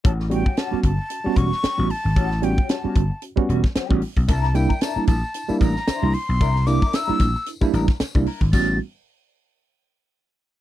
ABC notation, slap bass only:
X:1
M:4/4
L:1/16
Q:"Swing 16ths" 1/4=113
K:Amix
V:1 name="Slap bass" clef=bass
A,,,3 z3 G,,, z3 E,,, z2 A,,, z ^G,,, | A,,,3 z3 G,,, z3 E,,, z2 A,,, z B,,, | =C,,3 z3 _B,,, z3 A,,, z2 C,, z =B,,, | =C,,3 z3 _B,,, z3 A,,, z2 C,, z ^G,,, |
A,,,2 z12 z2 |]